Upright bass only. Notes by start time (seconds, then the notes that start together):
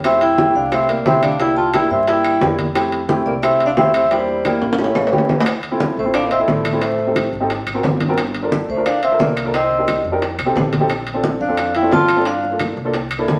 Already playing: F2
0.55 C2
1.06 C2
1.90 G2
2.41 F2
3.26 C2
3.76 E2
4.61 A1
5.12 D2
5.97 A1
6.48 A1
7.33 G#1
7.66 G#1
7.83 G1
8.68 D2
9.19 C2
10.04 F2
10.38 C2
10.55 A#1
11.41 F2
11.92 G2
12.77 C2
13.27 F2